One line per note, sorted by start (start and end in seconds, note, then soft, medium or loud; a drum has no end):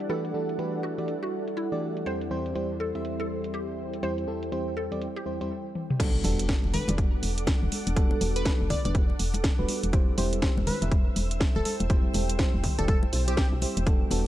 0.00 5.46 G3 medium
0.00 5.51 G3 medium
0.00 2.02 D4 medium
0.00 5.46 E4 medium
0.00 5.51 E4 medium
0.00 2.02 A4 medium
0.00 3.66 A4 medium
0.00 3.66 D5 medium
0.00 2.02 F#5 medium
0.00 2.06 F#5 medium
0.00 closed hi-hat soft
0.09 0.32 E3 medium
0.09 0.32 A3 medium
0.09 0.32 D4 medium
0.09 0.32 F#4 medium
0.09 0.32 G4 medium
0.09 0.26 A4 loud
0.09 0.32 B4 loud
0.09 closed hi-hat medium
0.25 closed hi-hat soft
0.34 0.56 E3 medium
0.34 0.56 A3 medium
0.34 0.56 D4 medium
0.34 0.56 F#4 medium
0.34 0.56 G4 medium
0.34 0.56 A4 medium
0.49 closed hi-hat soft
0.59 0.95 E3 medium
0.59 0.95 A3 medium
0.59 0.95 D4 medium
0.59 0.95 F#4 medium
0.59 0.95 G4 medium
0.59 0.95 B4 medium
0.59 closed hi-hat medium
0.83 1.05 F#4 medium
0.98 1.13 E3 medium
0.98 1.13 A3 medium
0.98 1.13 D4 medium
0.98 1.13 F#4 medium
0.98 1.13 G4 medium
0.98 1.13 D5 medium
0.98 closed hi-hat medium
1.08 closed hi-hat medium
1.23 1.43 F#4 medium
1.23 closed hi-hat soft
1.48 closed hi-hat medium
1.57 1.86 E4 medium
1.57 closed hi-hat medium
1.72 2.04 E3 medium
1.72 2.04 A3 medium
1.72 2.04 D4 medium
1.72 2.04 F#4 medium
1.72 2.04 G4 medium
1.72 2.04 D5 loud
1.97 closed hi-hat soft
2.06 2.29 E2 medium
2.06 5.47 E2 medium
2.06 2.29 G3 medium
2.06 5.47 C4 medium
2.06 2.29 C4 medium
2.06 2.29 E4 medium
2.06 2.29 G4 medium
2.06 2.23 C5 loud
2.06 5.47 C5 medium
2.06 2.29 C5 medium
2.06 closed hi-hat medium
2.21 closed hi-hat soft
2.31 2.53 E2 loud
2.31 2.53 G3 medium
2.31 2.53 C4 medium
2.31 2.53 E4 medium
2.31 2.53 G4 medium
2.31 2.53 C5 loud
2.31 5.51 C5 medium
2.46 closed hi-hat soft
2.55 2.91 E2 medium
2.55 2.91 G3 medium
2.55 2.91 C4 medium
2.55 2.91 E4 medium
2.55 2.91 G4 medium
2.55 2.92 C5 medium
2.55 closed hi-hat medium
2.80 3.02 A4 loud
2.95 4.01 E2 medium
2.95 4.01 G3 medium
2.95 4.01 C4 medium
2.95 4.01 E4 medium
2.95 4.01 G4 medium
2.95 4.01 E5 medium
2.95 closed hi-hat medium
3.05 closed hi-hat medium
3.09 5.51 G5 medium
3.20 3.40 A4 medium
3.20 closed hi-hat soft
3.44 closed hi-hat soft
3.54 3.83 G4 medium
3.54 closed hi-hat medium
3.93 closed hi-hat medium
4.03 4.25 E2 medium
4.03 4.25 G3 medium
4.03 4.25 C4 medium
4.03 4.25 E4 medium
4.03 4.25 G4 medium
4.03 4.19 C5 medium
4.03 4.25 C5 loud
4.03 closed hi-hat medium
4.18 closed hi-hat soft
4.27 4.50 E2 medium
4.27 4.50 G3 medium
4.27 4.50 C4 medium
4.27 4.50 E4 medium
4.27 4.50 G4 medium
4.27 4.50 A4 medium
4.43 closed hi-hat soft
4.52 4.88 E2 medium
4.52 4.88 G3 medium
4.52 4.88 C4 medium
4.52 4.88 E4 medium
4.52 4.88 G4 medium
4.52 4.88 C5 medium
4.52 closed hi-hat medium
4.77 4.99 A4 medium
4.92 5.06 E2 medium
4.92 5.06 G3 medium
4.92 5.06 C4 medium
4.92 5.06 E4 medium
4.92 5.06 G4 medium
4.92 5.06 D5 medium
4.92 closed hi-hat medium
5.02 closed hi-hat medium
5.16 5.37 G4 medium
5.16 closed hi-hat soft
5.26 5.39 E2 medium
5.26 5.39 G3 medium
5.26 5.39 C4 medium
5.26 5.39 E4 medium
5.26 5.39 G4 medium
5.26 5.39 C5 medium
5.41 5.50 E2 medium
5.41 5.51 G3 medium
5.41 5.51 C4 medium
5.41 5.51 E4 medium
5.41 5.51 G4 medium
5.41 5.51 C5 medium
5.41 closed hi-hat medium
5.75 high tom medium
5.90 mid tom medium
6.00 6.22 G3 medium
6.00 6.22 B3 medium
6.00 11.27 D4 medium
6.00 6.22 D4 medium
6.00 6.22 F#4 medium
6.00 9.89 A4 medium
6.00 6.22 A4 medium
6.00 9.89 F#5 medium
6.00 9.89 D6 medium
6.00 kick loud
6.00 closed hi-hat medium
6.00 crash loud
6.00 impact medium
6.00 muted conga medium
6.13 11.53 A4 medium
6.24 6.55 E1 loud
6.24 6.47 G3 loud
6.24 6.47 B3 medium
6.24 6.47 D4 medium
6.24 6.47 F#4 medium
6.24 6.47 A4 loud
6.24 open hi-hat loud
6.24 muted conga medium
6.39 closed hi-hat medium
6.49 6.85 G3 medium
6.49 6.85 B3 medium
6.49 6.85 D4 medium
6.49 6.85 F#4 medium
6.49 6.85 A4 loud
6.49 kick loud
6.49 snare loud
6.49 closed hi-hat medium
6.64 6.77 E1 medium
6.64 muted conga medium
6.73 6.93 B4 medium
6.73 open hi-hat medium
6.73 high conga medium
6.73 low conga medium
6.88 7.17 E1 loud
6.88 7.94 G3 medium
6.88 7.94 B3 medium
6.88 7.94 D4 medium
6.88 7.94 F#4 medium
6.88 7.94 D5 medium
6.88 closed hi-hat medium
6.88 muted conga medium
6.88 low conga medium
6.98 kick loud
6.98 closed hi-hat medium
7.23 7.53 E1 medium
7.23 open hi-hat loud
7.23 muted conga medium
7.38 closed hi-hat medium
7.47 kick loud
7.47 snare loud
7.47 closed hi-hat medium
7.47 muted conga medium
7.62 7.68 D1 loud
7.62 high conga medium
7.72 open hi-hat loud
7.72 high conga medium
7.87 8.15 E1 medium
7.87 closed hi-hat medium
7.87 muted conga medium
7.96 8.19 G3 loud
7.96 8.19 B3 medium
7.96 8.19 D4 medium
7.96 8.19 F#4 medium
7.96 8.19 A4 loud
7.96 kick loud
7.96 closed hi-hat medium
8.11 muted conga medium
8.21 8.51 E1 loud
8.21 8.43 G3 medium
8.21 8.43 B3 medium
8.21 8.43 D4 medium
8.21 8.43 F#4 medium
8.21 8.43 A4 medium
8.21 open hi-hat loud
8.36 8.53 B4 loud
8.36 closed hi-hat medium
8.45 8.82 G3 medium
8.45 8.82 B3 medium
8.45 8.82 D4 medium
8.45 8.82 F#4 medium
8.45 8.82 A4 loud
8.45 kick loud
8.45 snare loud
8.45 closed hi-hat medium
8.45 muted conga medium
8.61 8.74 E1 loud
8.70 8.80 D5 medium
8.70 kick medium
8.70 open hi-hat medium
8.70 muted conga medium
8.70 low conga medium
8.85 9.13 E1 loud
8.85 9.00 G3 medium
8.85 9.00 B3 medium
8.85 9.00 D4 medium
8.85 9.00 F#4 medium
8.85 9.00 B4 medium
8.85 8.91 D5 medium
8.85 closed hi-hat medium
8.85 low conga medium
8.95 kick loud
8.95 closed hi-hat medium
9.10 muted conga medium
9.19 9.50 E1 medium
9.19 open hi-hat loud
9.34 closed hi-hat medium
9.34 muted conga medium
9.44 kick loud
9.44 snare loud
9.44 closed hi-hat medium
9.59 9.65 D1 loud
9.59 9.91 G3 loud
9.59 9.91 B3 medium
9.59 9.91 D4 medium
9.59 9.91 F#4 medium
9.59 9.91 B4 loud
9.68 open hi-hat loud
9.68 muted conga medium
9.83 10.12 E1 medium
9.83 closed hi-hat medium
9.93 10.15 G3 medium
9.93 10.15 C4 medium
9.93 14.27 E4 medium
9.93 10.15 E4 medium
9.93 10.15 G4 medium
9.93 13.83 C5 medium
9.93 10.16 C5 loud
9.93 13.83 E5 medium
9.93 13.83 E6 medium
9.93 kick loud
9.93 closed hi-hat soft
9.93 muted conga medium
10.18 10.48 E1 loud
10.18 10.40 G3 loud
10.18 10.40 C4 medium
10.18 10.40 E4 medium
10.18 10.40 G4 medium
10.18 10.40 C5 loud
10.18 open hi-hat loud
10.33 closed hi-hat medium
10.33 muted conga soft
10.42 10.78 G3 medium
10.42 10.78 C4 medium
10.42 10.78 E4 medium
10.42 10.78 G4 medium
10.42 10.78 C5 medium
10.42 13.87 C5 medium
10.42 kick loud
10.42 snare loud
10.42 closed hi-hat medium
10.57 10.70 E1 loud
10.57 muted conga medium
10.67 10.86 B4 medium
10.67 open hi-hat medium
10.67 high conga medium
10.67 low conga medium
10.81 11.10 E1 loud
10.81 11.87 G3 medium
10.81 11.87 C4 medium
10.81 11.88 E4 medium
10.81 11.88 G4 medium
10.81 11.88 E5 medium
10.81 13.87 G5 medium
10.81 closed hi-hat medium
10.81 low conga medium
10.91 kick loud
10.91 closed hi-hat medium
10.91 muted conga soft
11.16 11.46 E1 medium
11.16 open hi-hat loud
11.16 muted conga medium
11.31 closed hi-hat medium
11.40 kick loud
11.40 snare loud
11.40 closed hi-hat medium
11.55 11.62 D1 loud
11.55 11.62 A4 medium
11.55 muted conga soft
11.55 high conga medium
11.65 11.75 A4 medium
11.65 open hi-hat loud
11.65 high conga medium
11.80 12.08 E1 medium
11.80 closed hi-hat medium
11.80 muted conga medium
11.90 12.12 G3 loud
11.90 12.12 C4 medium
11.90 12.12 E4 medium
11.90 12.12 G4 medium
11.90 12.12 C5 loud
11.90 kick loud
11.90 closed hi-hat medium
12.14 12.45 E1 loud
12.14 12.37 G3 medium
12.14 12.37 C4 medium
12.14 12.37 E4 medium
12.14 12.37 G4 medium
12.14 12.37 A4 medium
12.14 open hi-hat loud
12.14 muted conga soft
12.14 high conga medium
12.29 closed hi-hat medium
12.39 12.75 G3 medium
12.39 12.75 C4 medium
12.39 12.75 E4 medium
12.39 12.75 G4 medium
12.39 12.75 C5 medium
12.39 kick loud
12.39 snare loud
12.39 closed hi-hat medium
12.39 muted conga medium
12.54 12.67 E1 loud
12.64 kick medium
12.64 open hi-hat medium
12.64 low conga medium
12.78 13.07 E1 loud
12.78 12.93 G3 medium
12.78 12.93 C4 medium
12.78 12.93 E4 medium
12.78 12.93 G4 medium
12.78 12.85 A4 medium
12.78 12.93 D5 medium
12.78 closed hi-hat medium
12.78 muted conga soft
12.78 low conga medium
12.88 12.98 A4 medium
12.88 kick loud
12.88 closed hi-hat soft
12.88 high conga medium
13.03 muted conga medium
13.13 13.43 B1 medium
13.13 13.26 G3 medium
13.13 13.26 C4 medium
13.13 13.26 E4 medium
13.13 13.26 G4 medium
13.13 13.26 C5 medium
13.13 open hi-hat loud
13.28 13.60 G3 medium
13.28 13.60 C4 medium
13.28 13.60 E4 medium
13.28 13.34 G4 medium
13.28 13.60 G4 medium
13.28 13.60 C5 loud
13.28 closed hi-hat medium
13.37 13.47 G4 medium
13.37 kick loud
13.37 snare loud
13.37 closed hi-hat medium
13.37 muted conga medium
13.52 13.65 B1 medium
13.62 13.84 G3 medium
13.62 13.84 C4 medium
13.62 13.84 E4 medium
13.62 13.84 G4 medium
13.62 13.84 C5 medium
13.62 open hi-hat loud
13.62 muted conga medium
13.77 14.05 E1 loud
13.77 closed hi-hat medium
13.86 14.09 G3 medium
13.86 14.09 B3 medium
13.86 14.09 D4 medium
13.86 14.27 D4 medium
13.86 14.09 F#4 medium
13.86 14.27 A4 medium
13.86 14.09 A4 loud
13.86 14.27 F#5 medium
13.86 14.27 D6 medium
13.86 kick loud
13.86 closed hi-hat medium
13.86 muted conga soft
13.96 14.27 A4 medium
14.10 14.27 E1 loud
14.10 14.27 G3 medium
14.10 14.27 G3 loud
14.10 14.27 B3 medium
14.10 14.27 D4 medium
14.10 14.27 F#4 medium
14.10 14.27 A4 loud
14.10 open hi-hat loud
14.10 muted conga medium